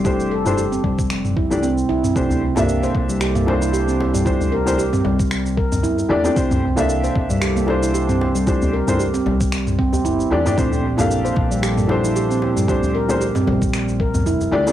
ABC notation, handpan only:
X:1
M:4/4
L:1/16
Q:"Swing 16ths" 1/4=114
K:Cmix
V:1 name="Handpan"
G z A2 G C G, z3 E z C z E C | C3 B,2 c z G, G B,2 E G C z G, | G z B2 G C G, z3 B2 E z2 C | C3 B,2 c z G, G B,2 E G C z G, |
G z B2 G C G, z3 C G E z2 G | C3 B,2 c z G, G B,2 E G C z G, | G z B2 G C G, z3 B2 E z2 C |]